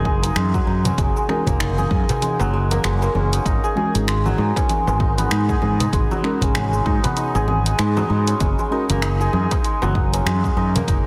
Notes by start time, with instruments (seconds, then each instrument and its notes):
Already playing: fretless electric bass F#1, santur F#3 G#3 A#3 C#4 D#4
0.05 santur G#4, kick
0.23 santur D#4, closed hi-hat, darbuka ka, shaker
0.36 fretless electric bass F#2, santur G#3, finger snap, closed hi-hat, low conga, shaker
0.54 santur F#3, kick, shaker
0.67 fretless electric bass F#2, santur D#4, darbuka ka
0.85 santur C#4, closed hi-hat, darbuka dum, low conga, shaker
0.98 fretless electric bass F#1, santur G#3, kick, closed hi-hat, shaker
1.16 santur G#3, shaker
1.28 synth keys G#3 C#4 F#4 A#4, santur D#4, finger snap, low conga
1.46 fretless electric bass F#1, synth keys G#3 G#4, santur A#3, kick, closed hi-hat, darbuka dum, shaker
1.60 santur D#4, finger snap, closed hi-hat, shaker
1.78 santur G#4, low conga, shaker
1.91 fretless electric bass F#2, santur G#4, kick
2.09 santur D#4, closed hi-hat, darbuka tek, darbuka dum, shaker
2.22 santur G#3, closed hi-hat, low conga, shaker
2.40 fretless electric bass F#1, santur F#3, darbuka tek, shaker
2.53 santur G#3
2.71 santur A#3, closed hi-hat, darbuka tek, low conga, shaker
2.84 fretless electric bass F#1, santur G#3, finger snap, closed hi-hat, darbuka tek, shaker
3.02 santur A#3, darbuka tek, shaker
3.15 fretless electric bass F#1, santur C#4, low conga
3.33 santur D#4, closed hi-hat, darbuka ka, shaker
3.46 fretless electric bass G#1, santur D#4, kick, closed hi-hat, shaker
3.64 santur G#4, darbuka ka, shaker
3.75 synth keys G#3 C#4 F#4 A#4, santur G#4, low conga
3.94 fretless electric bass G#1, synth keys G#3 C#4 F#4 G#4, santur D#4, closed hi-hat, shaker
4.08 santur G#3, finger snap, closed hi-hat, shaker
4.25 santur F#3, low conga, shaker
4.38 fretless electric bass G#2, santur D#4
4.56 santur C#4, kick, closed hi-hat, darbuka tek, shaker
4.69 santur G#3, closed hi-hat, low conga, shaker
4.87 fretless electric bass G#1, santur G#3, darbuka tek, shaker
5.00 santur D#4, kick
5.18 santur B3, closed hi-hat, darbuka ka, low conga, shaker
5.31 fretless electric bass G#2, santur D#4, finger snap, closed hi-hat, shaker
5.49 santur G#4, kick, shaker
5.62 fretless electric bass G#2, santur G#4, darbuka ka, low conga
5.80 santur D#4, closed hi-hat, darbuka dum, shaker
5.93 fretless electric bass G#1, santur G#3, kick, closed hi-hat, shaker
6.11 santur F#3, low conga, shaker
6.23 synth keys G#3 C#4 F#4 A#4, santur D#4, finger snap
6.41 fretless electric bass G#1, synth keys G#3 C#4 G#4, santur C#4, kick, closed hi-hat, darbuka dum, shaker
6.55 santur G#3, finger snap, closed hi-hat, low conga, shaker
6.73 santur G#3, shaker
6.86 fretless electric bass G#2, santur D#4, kick
7.04 santur B3, closed hi-hat, darbuka tek, low conga, darbuka dum, shaker
7.17 santur D#4, closed hi-hat, shaker
7.35 fretless electric bass G#1, santur G#4, darbuka tek, shaker
7.48 santur G#4, low conga
7.66 santur D#4, closed hi-hat, shaker
7.79 fretless electric bass G#2, santur G#3, finger snap, closed hi-hat, darbuka tek, shaker
7.97 santur F#3, darbuka tek, low conga, shaker
8.10 fretless electric bass G#2, santur D#4
8.27 santur C#4, closed hi-hat, darbuka ka, shaker
8.40 fretless electric bass F#1, santur G#3, kick, closed hi-hat, low conga, shaker
8.59 santur G#3, darbuka ka, shaker
8.70 synth keys G#3 C#4 F#4 A#4, santur D#4
8.88 fretless electric bass F#1, synth keys G#3 C#4 G#4, santur A#3, closed hi-hat, low conga, shaker
9.02 santur D#4, finger snap, closed hi-hat, shaker
9.21 santur G#4, shaker
9.33 fretless electric bass F#2, santur G#4, low conga
9.51 santur D#4, kick, closed hi-hat, darbuka tek, shaker
9.64 santur G#3, closed hi-hat, shaker
9.82 fretless electric bass F#1, santur F#3, darbuka tek, low conga, shaker
9.95 santur D#4, kick
10.14 santur C#4, closed hi-hat, darbuka ka, shaker
10.26 fretless electric bass F#2, santur G#3, finger snap, closed hi-hat, low conga, shaker
10.44 santur G#3, kick, shaker
10.56 fretless electric bass F#2, santur D#4, darbuka ka
10.75 santur A#3, closed hi-hat, low conga, darbuka dum, shaker
10.88 fretless electric bass F#1, santur D#4, kick, closed hi-hat, shaker